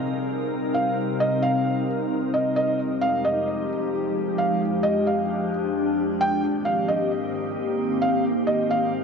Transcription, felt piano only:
0.74 0.96 F5 medium
1.20 1.42 D#5 medium
1.42 1.85 F5 medium
2.34 2.55 D#5 medium
2.56 2.78 D#5 medium
3.01 3.23 F5 medium
3.25 3.67 D#5 medium
4.38 4.60 F5 medium
4.83 5.05 D#5 medium
5.07 5.49 F5 medium
6.21 6.42 G5 loud
6.65 6.87 F5 medium
6.88 7.31 D#5 medium
8.02 8.23 F5 medium
8.47 8.69 D#5 medium
8.70 9.04 F5 medium

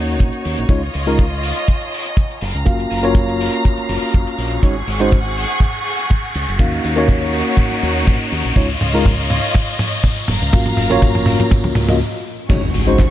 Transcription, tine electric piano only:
0.00 0.66 A#3 medium
0.00 0.67 C#4 medium
0.00 0.67 D#4 medium
0.00 0.67 F#4 medium
0.00 0.67 C#5 loud
0.69 0.81 G#3 medium
0.69 0.81 C#4 medium
0.69 0.81 D#4 medium
0.69 0.81 F4 medium
0.69 0.81 C#5 medium
1.07 1.24 G#3 medium
1.07 1.24 C#4 medium
1.07 1.24 D#4 medium
1.07 1.24 F4 medium
1.07 1.24 A#4 loud
2.65 3.00 A#3 medium
2.65 3.01 C#4 medium
2.65 3.01 F4 medium
2.65 3.01 F#4 medium
2.65 3.01 F5 medium
3.03 4.60 A#3 medium
3.03 4.60 C#4 medium
3.03 4.60 F4 medium
3.03 4.60 F#4 medium
3.03 4.61 C#5 loud
4.62 4.74 G#3 medium
4.62 4.74 C#4 medium
4.62 4.74 D#4 medium
4.62 4.75 F#4 medium
4.62 4.75 C#5 medium
5.00 5.17 G#3 medium
5.00 5.17 C#4 medium
5.00 5.17 D#4 medium
5.00 5.18 F#4 medium
5.00 5.18 C5 medium
6.59 6.94 A#3 medium
6.59 6.94 C#4 medium
6.59 6.94 D#4 medium
6.59 6.94 F#4 medium
6.59 6.95 F5 medium
6.96 8.53 A#3 medium
6.96 8.53 C#4 medium
6.96 8.54 D#4 medium
6.96 8.54 F#4 medium
6.96 8.54 C#5 loud
8.56 8.68 G#3 medium
8.56 8.68 C#4 medium
8.56 8.68 D#4 medium
8.56 8.68 F4 medium
8.56 8.68 C#5 medium
8.94 9.11 G#3 medium
8.94 9.11 C#4 medium
8.94 9.11 D#4 medium
8.94 9.11 F4 medium
8.94 9.11 A#4 loud
10.53 10.88 A#3 medium
10.53 10.88 C#4 medium
10.53 10.88 F4 medium
10.53 10.88 F#4 medium
10.53 10.88 F5 medium
10.90 11.86 A#3 medium
10.90 11.86 C#4 medium
10.90 11.87 F4 medium
10.90 11.87 F#4 medium
10.90 11.87 C#5 loud
11.88 11.98 A#3 medium
11.88 11.98 C#4 medium
11.88 11.98 F4 medium
11.88 11.98 F#4 medium
11.88 11.98 D#5 medium
12.49 12.61 G#3 medium
12.49 12.61 C#4 medium
12.49 12.61 D#4 medium
12.49 12.61 F#4 medium
12.49 12.61 C#5 medium
12.87 13.04 G#3 medium
12.87 13.04 C#4 medium
12.87 13.04 D#4 medium
12.87 13.04 F#4 medium
12.87 13.05 C5 medium

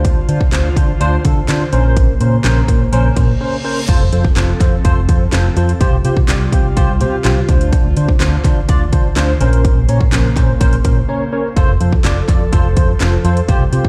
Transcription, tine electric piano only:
0.00 0.19 D4 loud
0.00 0.19 F4 medium
0.00 0.19 C5 loud
0.28 0.42 D4 medium
0.28 0.43 F4 medium
0.28 0.43 C5 medium
0.52 0.66 D4 medium
0.52 0.67 F4 medium
0.52 0.67 C5 medium
0.76 0.91 D4 medium
0.76 0.91 F4 medium
0.76 0.91 C5 loud
1.00 1.15 D4 loud
1.00 1.15 F4 loud
1.00 1.15 C5 loud
1.24 1.39 D4 medium
1.24 1.39 F4 medium
1.24 1.39 A4 loud
1.48 1.62 D4 medium
1.48 1.63 F4 medium
1.48 1.63 C5 loud
1.72 2.11 C#4 medium
1.72 2.11 A#4 medium
1.72 2.11 C5 loud
2.20 2.34 C#4 medium
2.20 2.35 A#4 medium
2.20 2.35 C5 loud
2.44 2.58 C#4 medium
2.44 2.59 A#4 medium
2.44 2.59 C5 medium
2.68 2.83 C#4 medium
2.68 2.83 A#4 medium
2.68 2.83 C5 loud
2.92 3.06 C#4 loud
2.92 3.07 A#4 loud
2.92 3.07 C5 loud
3.16 3.30 C#4 medium
3.16 3.31 A#4 medium
3.16 3.31 C5 loud
3.40 3.55 C#4 medium
3.40 3.55 A#4 medium
3.40 3.55 C5 loud
3.64 3.78 C#4 medium
3.64 3.79 A#4 medium
3.64 3.79 C5 loud
3.88 4.02 F4 loud
3.88 4.03 A4 loud
3.88 4.03 C5 loud
4.12 4.27 F4 medium
4.12 4.27 A4 medium
4.12 4.27 C5 medium
4.36 4.50 F4 medium
4.36 4.51 A4 medium
4.36 4.51 C5 medium
4.60 4.75 F4 medium
4.60 4.75 A4 medium
4.60 4.75 C5 loud
4.84 4.99 F4 loud
4.84 4.99 A4 loud
4.84 4.99 C5 loud
5.09 5.23 F4 medium
5.09 5.23 A4 medium
5.09 5.23 C5 loud
5.33 5.47 F4 medium
5.33 5.47 A4 medium
5.33 5.47 C5 loud
5.57 5.71 F4 medium
5.57 5.71 A4 medium
5.57 5.71 C5 loud
5.81 5.95 F4 loud
5.81 5.95 G4 loud
5.81 5.95 C5 loud
6.05 6.19 F4 medium
6.05 6.19 G4 medium
6.05 6.19 C5 loud
6.28 6.43 F4 medium
6.28 6.43 G4 medium
6.28 6.43 D5 loud
6.52 6.67 F4 medium
6.52 6.67 G4 medium
6.52 6.67 C5 loud
6.76 6.91 F4 loud
6.76 6.91 G4 loud
6.76 6.91 C5 loud
7.00 7.15 F4 medium
7.00 7.15 G4 medium
7.00 7.15 C5 loud
7.24 7.39 F4 medium
7.24 7.39 G4 medium
7.24 7.39 C5 loud
7.49 7.87 D4 loud
7.49 7.87 F4 medium
7.49 7.87 C5 loud
7.96 8.11 D4 medium
7.96 8.11 F4 medium
7.96 8.11 C5 medium
8.21 8.35 D4 medium
8.21 8.35 F4 medium
8.21 8.35 C5 loud
8.45 8.59 D4 medium
8.45 8.59 F4 medium
8.45 8.59 C5 loud
8.68 8.83 D4 loud
8.68 8.83 F4 loud
8.68 8.83 D5 loud
8.92 9.07 D4 medium
8.92 9.07 F4 medium
8.92 9.07 C5 loud
9.16 9.31 D4 medium
9.16 9.31 F4 medium
9.16 9.31 C5 loud
9.41 9.79 C#4 medium
9.41 9.79 A#4 medium
9.41 9.79 C5 loud
9.88 10.03 C#4 medium
9.88 10.03 A#4 medium
9.88 10.03 C#5 loud
10.12 10.26 C#4 medium
10.12 10.27 A#4 medium
10.12 10.27 C5 medium
10.36 10.51 C#4 medium
10.36 10.51 A#4 medium
10.36 10.51 C5 loud
10.60 10.75 C#4 loud
10.60 10.75 A#4 loud
10.60 10.75 C5 loud
10.84 10.98 C#4 medium
10.84 10.99 A#4 medium
10.84 10.99 C5 loud
11.08 11.23 C#4 medium
11.08 11.23 A#4 medium
11.08 11.23 C#5 medium
11.32 11.47 C#4 medium
11.32 11.47 A#4 medium
11.32 11.47 C#5 medium
11.56 11.71 F4 loud
11.56 11.71 A4 loud
11.56 11.71 C5 loud
11.80 11.95 F4 medium
11.80 11.95 A4 medium
11.80 11.95 C5 medium
12.05 12.19 F4 medium
12.05 12.19 A4 medium
12.05 12.19 D5 medium
12.28 12.42 F4 medium
12.28 12.43 A4 medium
12.28 12.43 D5 loud
12.52 12.66 F4 loud
12.52 12.67 A4 loud
12.52 12.67 C5 loud
12.76 12.90 F4 medium
12.76 12.91 A4 medium
12.76 12.91 C5 loud
13.00 13.15 F4 medium
13.00 13.15 A4 medium
13.00 13.15 C5 loud
13.24 13.39 F4 medium
13.24 13.39 A4 medium
13.24 13.39 C5 loud
13.48 13.62 F4 loud
13.48 13.63 G4 loud
13.48 13.63 C5 loud
13.72 13.87 F4 medium
13.72 13.87 G4 medium
13.72 13.87 C5 loud

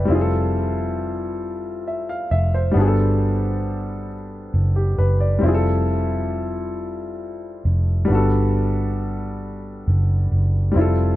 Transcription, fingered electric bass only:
0.09 2.27 F1 medium
2.31 2.72 F1 medium
2.75 4.49 G1 medium
4.54 4.94 F#1 medium
4.98 5.38 F#1 medium
5.42 7.61 F1 medium
7.65 8.05 F1 medium
8.10 9.83 G1 medium
9.88 10.28 F#1 medium
10.32 10.72 F#1 medium
10.76 11.16 F1 medium

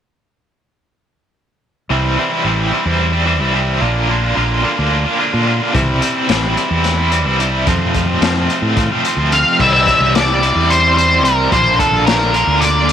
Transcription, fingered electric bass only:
1.90 2.16 C2 medium
2.45 2.71 A1 medium
2.85 3.41 E2 medium
3.41 3.80 C2 medium
3.82 4.34 A#1 medium
4.37 4.63 A#1 medium
4.79 5.04 D2 medium
5.34 5.59 A#2 medium
5.75 6.00 C2 medium
6.29 6.55 A1 medium
6.71 7.26 E2 medium
7.26 7.64 C2 medium
7.67 8.19 F2 medium
8.21 8.47 F2 medium
8.62 8.88 A2 medium
9.17 9.43 D2 medium
9.60 9.85 C2 medium
10.00 10.52 C2 medium
10.55 11.23 E2 medium
11.23 11.50 C2 medium
11.52 11.78 A#1 medium
11.92 12.44 A#1 medium
12.47 12.93 D2 medium

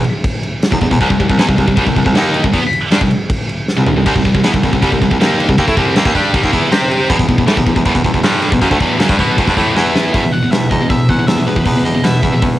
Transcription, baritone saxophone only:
0.72 0.81 E2 medium
0.81 0.90 E2 medium
0.91 1.00 E2 medium
1.01 1.10 C2 loud
1.10 1.19 C2 medium
1.20 1.29 C2 medium
1.29 1.38 C2 medium
1.39 1.48 E2 loud
1.48 1.57 C2 medium
1.58 1.67 C2 medium
1.67 1.76 C2 medium
1.77 1.86 C2 medium
1.87 1.95 C2 medium
1.96 2.05 C2 medium
2.06 2.14 C2 medium
2.17 2.42 D#2 medium
2.43 2.52 C2 medium
2.53 2.62 E2 medium
2.63 2.79 C2 soft
2.91 3.00 G2 loud
3.01 3.10 C2 medium
3.77 3.85 C2 medium
3.86 3.95 C2 medium
3.96 4.05 C2 medium
4.06 4.15 C2 medium
4.16 4.24 C2 medium
4.25 4.34 C2 medium
4.35 4.42 C2 medium
4.43 4.52 E2 medium
4.54 4.63 C2 medium
4.63 4.72 C2 medium
4.73 4.82 C2 medium
4.82 4.91 C2 medium
4.92 5.01 C2 medium
5.02 5.10 C2 medium
5.11 5.19 C2 medium
5.20 5.47 D#2 medium
5.49 5.58 C2 medium
5.58 5.67 D#2 loud
5.68 5.77 A2 loud
5.77 5.95 C2 medium
5.96 6.05 D#2 loud
6.05 6.14 D#2 loud
6.15 6.33 G2 loud
6.34 6.43 C2 medium
6.43 6.52 D#2 loud
6.53 6.71 E2 medium
6.71 7.07 C3 medium
7.10 7.19 E2 loud
7.19 7.28 E2 medium
7.29 7.38 E2 medium
7.38 7.45 E2 medium
7.46 7.56 A2 medium
7.57 7.66 E2 medium
7.66 7.75 E2 medium
7.76 7.85 E2 medium
7.85 7.94 E2 medium
7.95 8.04 E2 medium
8.04 8.13 E2 medium
8.14 8.22 E2 medium
8.23 8.50 G2 loud
8.52 8.61 E2 medium
8.61 8.70 F#2 loud
8.71 8.80 D2 loud
8.80 8.97 E2 medium
8.98 9.08 F#2 medium
9.09 9.18 G2 loud
9.19 9.36 B2 medium
9.38 9.47 E2 medium
9.48 9.56 G2 loud
9.57 9.74 A2 loud
9.76 10.11 E2 loud
10.14 10.29 E2 medium
10.52 10.67 E2 medium
10.71 10.86 E2 medium
10.90 11.05 E2 medium
11.09 11.24 E2 medium
11.28 11.43 E2 medium
11.46 11.62 E2 medium
11.66 11.81 E2 medium
11.85 12.00 E2 medium
12.03 12.19 B2 medium
12.23 12.39 E2 medium
12.42 12.58 E2 medium

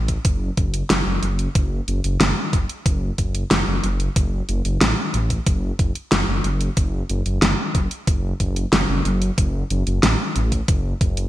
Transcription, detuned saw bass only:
0.00 0.18 A1 medium
0.25 0.50 F#1 medium
0.57 0.83 F#1 medium
0.90 1.03 F#1 medium
1.06 1.19 F#1 loud
1.23 1.48 F#1 loud
1.55 1.81 F#1 loud
1.88 2.01 F#1 medium
2.04 2.17 F#1 medium
2.21 2.33 F#1 medium
2.53 2.66 F#1 medium
2.86 3.11 F#1 medium
3.18 3.44 F#1 medium
3.51 3.64 F#1 medium
3.67 3.80 F#1 medium
3.84 4.09 F#1 loud
4.16 4.42 F#1 loud
4.49 4.61 F#1 loud
4.65 4.78 F#1 medium
4.81 4.94 A1 medium
5.14 5.39 A1 medium
5.47 5.72 F#1 medium
5.79 5.92 F#1 loud
6.12 6.24 F#1 medium
6.28 6.41 F#1 medium
6.44 6.70 F#1 medium
6.77 7.02 F#1 loud
7.10 7.22 F#1 medium
7.26 7.39 F#1 medium
7.42 7.55 F#1 medium
7.75 7.88 F#1 medium
8.07 8.33 F#1 medium
8.40 8.65 F#1 medium
8.73 8.85 F#1 medium
8.89 9.02 F#1 medium
9.05 9.31 F#1 loud
9.38 9.63 F#1 loud
9.70 9.83 F#1 loud
9.87 9.99 F#1 medium
10.03 10.16 A1 medium
10.36 10.61 A1 medium
10.68 10.94 F#1 medium
11.01 11.26 F#1 medium

